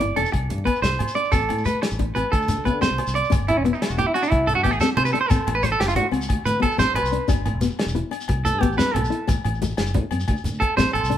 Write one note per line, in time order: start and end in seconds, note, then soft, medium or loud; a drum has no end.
0.00 0.12 G1 medium
0.00 0.13 E4 medium
0.00 0.15 D5 medium
0.00 closed hi-hat soft
0.00 low conga medium
0.16 0.24 E1 medium
0.16 0.43 D4 medium
0.16 0.32 A4 medium
0.16 closed hi-hat soft
0.16 high conga medium
0.16 low agogo medium
0.25 shekere medium
0.32 0.47 C2 medium
0.32 muted clean electric guitar stroke medium
0.32 kick medium
0.32 closed hi-hat medium
0.32 low agogo medium
0.42 low conga soft
0.49 0.63 G2 medium
0.49 closed hi-hat medium
0.49 low conga medium
0.58 high conga medium
0.65 0.79 B3 medium
0.65 0.82 B4 medium
0.65 kick medium
0.65 closed hi-hat soft
0.65 low agogo medium
0.76 shekere soft
0.82 0.96 C2 medium
0.82 1.14 C5 medium
0.82 snare medium
0.82 closed hi-hat medium
0.82 shekere medium
0.91 low conga soft
0.91 shekere soft
0.99 closed hi-hat soft
0.99 high conga medium
0.99 low conga medium
0.99 low agogo medium
1.08 shekere medium
1.15 1.29 D4 medium
1.15 1.31 D5 medium
1.15 closed hi-hat soft
1.24 low conga soft
1.24 shekere soft
1.32 1.46 A1 medium
1.32 1.59 C4 medium
1.32 1.64 A4 medium
1.32 kick medium
1.32 closed hi-hat medium
1.32 high conga medium
1.32 low agogo medium
1.32 shekere medium
1.41 shekere soft
1.49 1.63 A2 medium
1.49 closed hi-hat soft
1.49 low conga medium
1.49 low agogo medium
1.58 low conga soft
1.58 shekere soft
1.65 1.92 A3 medium
1.65 1.82 B4 medium
1.65 closed hi-hat soft
1.65 low conga soft
1.65 shekere medium
1.75 high conga medium
1.75 low conga soft
1.82 muted clean electric guitar stroke medium
1.82 snare medium
1.82 closed hi-hat medium
1.82 low agogo medium
1.90 2.11 A1 medium
1.90 shekere medium
1.99 2.12 D4 medium
1.99 kick medium
1.99 closed hi-hat soft
1.99 low conga medium
2.15 2.23 A1 medium
2.15 2.41 C4 medium
2.15 2.31 B4 medium
2.15 closed hi-hat soft
2.15 high conga medium
2.15 low agogo medium
2.15 shekere soft
2.32 2.46 D2 medium
2.32 2.64 A4 medium
2.32 kick medium
2.32 closed hi-hat medium
2.32 low agogo medium
2.32 shekere soft
2.42 shekere soft
2.48 2.56 D3 medium
2.48 closed hi-hat soft
2.48 low conga medium
2.48 shekere medium
2.57 2.68 D2 medium
2.57 high conga medium
2.65 2.86 D3 medium
2.65 2.78 B3 medium
2.65 2.81 B4 medium
2.65 kick medium
2.65 closed hi-hat soft
2.65 low conga soft
2.65 low agogo medium
2.81 3.07 C4 medium
2.81 3.13 C5 medium
2.81 snare medium
2.81 closed hi-hat medium
2.81 shekere medium
2.91 2.97 C2 medium
2.98 closed hi-hat soft
2.98 high conga medium
2.98 low agogo medium
3.07 3.21 C2 medium
3.07 shekere medium
3.15 3.28 D4 medium
3.15 3.31 D5 medium
3.15 closed hi-hat soft
3.15 low conga soft
3.24 low conga soft
3.24 shekere soft
3.30 3.52 G1 loud
3.30 3.57 D4 medium
3.30 kick medium
3.30 closed hi-hat medium
3.30 high conga medium
3.30 low agogo medium
3.30 shekere medium
3.48 3.57 E4 medium
3.48 closed hi-hat soft
3.48 low conga medium
3.48 low agogo medium
3.57 3.70 E1 medium
3.57 3.65 C#4 medium
3.64 3.91 B3 medium
3.64 muted clean electric guitar stroke medium
3.64 closed hi-hat soft
3.64 high conga medium
3.64 low conga soft
3.73 3.82 D#4 medium
3.73 shekere soft
3.82 3.91 E4 medium
3.82 snare medium
3.82 closed hi-hat medium
3.82 low agogo medium
3.89 4.03 E1 medium
3.89 3.98 F#4 medium
3.89 shekere medium
3.98 4.11 E4 medium
3.98 4.07 G4 medium
3.98 closed hi-hat soft
3.98 high conga medium
3.98 low conga medium
4.07 4.14 E4 medium
4.14 4.41 D4 medium
4.14 4.22 F#4 medium
4.14 closed hi-hat soft
4.14 low agogo medium
4.23 4.30 D4 medium
4.23 shekere medium
4.30 4.52 C2 medium
4.30 4.47 E4 medium
4.30 kick medium
4.30 closed hi-hat medium
4.30 high conga medium
4.30 low conga soft
4.30 low agogo medium
4.47 4.55 A4 loud
4.47 closed hi-hat soft
4.47 low conga medium
4.55 4.63 G2 medium
4.55 4.63 F#4 medium
4.63 4.78 A1 medium
4.63 4.77 B3 medium
4.63 4.71 G4 medium
4.63 kick medium
4.63 closed hi-hat soft
4.63 high conga loud
4.63 low conga soft
4.63 low agogo medium
4.71 4.80 G#4 medium
4.71 shekere soft
4.80 5.08 C4 medium
4.80 4.89 A4 medium
4.80 snare medium
4.80 closed hi-hat medium
4.80 shekere medium
4.97 5.11 C3 medium
4.97 5.05 C5 medium
4.97 closed hi-hat soft
4.97 high conga loud
4.97 low conga loud
4.97 low agogo medium
5.05 5.13 B4 medium
5.05 shekere medium
5.13 5.27 D4 medium
5.13 5.20 A4 medium
5.13 closed hi-hat soft
5.13 low conga soft
5.21 5.30 C5 medium
5.30 5.38 A1 medium
5.30 5.57 C4 medium
5.30 5.55 A4 medium
5.30 kick medium
5.30 closed hi-hat medium
5.30 high conga medium
5.30 low agogo medium
5.30 shekere loud
5.47 5.74 A1 loud
5.47 closed hi-hat soft
5.47 low conga loud
5.47 low agogo medium
5.55 5.63 B4 medium
5.63 5.89 A3 medium
5.63 5.71 C5 loud
5.63 snare soft
5.63 closed hi-hat soft
5.63 high conga medium
5.63 low conga soft
5.63 shekere medium
5.72 5.80 A4 medium
5.72 shekere soft
5.80 5.97 F#1 medium
5.80 5.88 G4 medium
5.80 snare medium
5.80 closed hi-hat medium
5.80 low agogo medium
5.88 5.96 F4 medium
5.88 shekere medium
5.96 6.03 A2 medium
5.96 6.09 D4 medium
5.96 6.06 F#4 medium
5.96 closed hi-hat medium
5.96 high conga medium
5.96 low conga medium
6.11 6.26 C#2 medium
6.11 6.38 C4 medium
6.11 closed hi-hat soft
6.11 low agogo medium
6.22 shekere medium
6.29 6.37 D2 loud
6.29 kick medium
6.29 closed hi-hat medium
6.29 high conga loud
6.29 low conga soft
6.29 low agogo medium
6.46 6.60 D2 medium
6.46 6.62 B4 medium
6.46 closed hi-hat medium
6.46 low conga medium
6.46 shekere loud
6.60 6.74 B3 medium
6.60 6.79 A4 medium
6.60 kick medium
6.60 closed hi-hat soft
6.60 high conga loud
6.60 low conga soft
6.60 low agogo medium
6.71 shekere soft
6.78 6.86 A1 medium
6.78 7.05 C4 medium
6.78 6.95 C5 loud
6.78 snare medium
6.78 closed hi-hat medium
6.78 shekere loud
6.94 7.02 A1 medium
6.94 7.27 B4 medium
6.94 closed hi-hat soft
6.94 high conga loud
6.94 low agogo medium
7.03 7.17 C2 medium
7.03 shekere medium
7.12 7.25 D4 medium
7.12 closed hi-hat soft
7.12 low conga soft
7.28 7.50 G1 loud
7.28 7.54 D4 medium
7.28 kick medium
7.28 closed hi-hat medium
7.28 high conga loud
7.28 low agogo medium
7.28 shekere medium
7.46 closed hi-hat soft
7.46 low conga loud
7.46 low agogo medium
7.53 7.67 E1 medium
7.61 7.88 B3 medium
7.61 snare soft
7.61 closed hi-hat soft
7.61 high conga medium
7.61 low conga soft
7.61 shekere medium
7.71 shekere soft
7.79 snare medium
7.79 closed hi-hat medium
7.79 low agogo medium
7.86 8.00 E1 medium
7.86 shekere medium
7.95 8.08 E4 medium
7.95 closed hi-hat soft
7.95 high conga medium
8.11 8.37 D4 medium
8.11 closed hi-hat soft
8.11 low agogo medium
8.21 shekere medium
8.28 8.49 C2 loud
8.28 kick medium
8.28 closed hi-hat medium
8.28 high conga loud
8.28 low conga soft
8.28 low agogo medium
8.45 8.61 A4 medium
8.45 closed hi-hat medium
8.45 low conga medium
8.45 shekere medium
8.53 8.60 G2 medium
8.61 8.76 A1 medium
8.61 8.74 B3 medium
8.61 8.78 G4 medium
8.61 kick medium
8.61 closed hi-hat medium
8.61 high conga loud
8.61 low conga soft
8.61 low agogo medium
8.72 shekere soft
8.78 9.04 C4 medium
8.78 8.94 B4 loud
8.78 snare medium
8.78 closed hi-hat medium
8.78 shekere loud
8.94 9.08 B1 medium
8.94 9.28 A4 medium
8.94 closed hi-hat soft
8.94 high conga loud
8.94 low conga loud
8.94 low agogo medium
9.05 shekere medium
9.10 9.24 E4 medium
9.10 closed hi-hat soft
9.10 low conga soft
9.27 9.35 A1 medium
9.27 muted steel-string acoustic guitar stroke medium
9.27 kick medium
9.27 closed hi-hat medium
9.27 high conga loud
9.27 low agogo medium
9.27 shekere loud
9.45 9.72 A1 loud
9.45 closed hi-hat medium
9.45 low conga medium
9.45 low agogo medium
9.54 shekere soft
9.62 9.88 A3 medium
9.62 closed hi-hat medium
9.62 high conga medium
9.62 shekere medium
9.77 9.97 F#1 medium
9.77 snare medium
9.77 closed hi-hat medium
9.77 low agogo medium
9.77 shekere soft
9.86 low conga soft
9.86 shekere medium
9.94 10.02 A2 medium
9.94 10.08 D4 medium
9.94 kick medium
9.94 closed hi-hat soft
9.94 high conga medium
9.94 low conga medium
10.11 10.25 F#2 medium
10.11 10.37 C4 medium
10.11 closed hi-hat soft
10.11 low agogo medium
10.20 shekere medium
10.28 10.35 D2 loud
10.28 kick medium
10.28 closed hi-hat medium
10.28 high conga medium
10.28 low agogo medium
10.37 shekere soft
10.44 10.58 D2 medium
10.44 closed hi-hat medium
10.44 low conga medium
10.44 shekere medium
10.54 shekere soft
10.60 10.77 A4 medium
10.60 muted steel-string acoustic guitar stroke medium
10.60 kick medium
10.60 closed hi-hat soft
10.60 high conga medium
10.60 low agogo medium
10.77 10.85 A1 loud
10.77 11.03 C4 medium
10.77 10.93 C5 medium
10.77 snare medium
10.77 closed hi-hat medium
10.77 high conga medium
10.77 shekere medium
10.88 shekere soft
10.93 11.01 A1 medium
10.93 11.18 A4 medium
10.93 closed hi-hat soft
10.93 low conga medium
10.93 low agogo medium
11.03 11.16 C2 medium
11.03 shekere medium
11.10 11.18 D4 medium
11.10 closed hi-hat soft
11.10 low conga medium